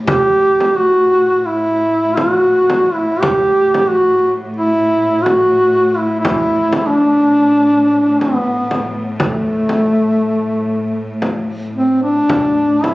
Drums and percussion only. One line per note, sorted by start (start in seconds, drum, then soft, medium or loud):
0.07 frame drum medium
0.60 frame drum soft
2.17 frame drum soft
2.70 frame drum soft
3.23 frame drum medium
3.74 frame drum medium
5.26 frame drum medium
6.25 frame drum medium
6.73 frame drum medium
8.21 frame drum soft
8.71 frame drum soft
9.20 frame drum medium
9.69 frame drum soft
11.22 frame drum soft
12.29 frame drum medium
12.84 frame drum medium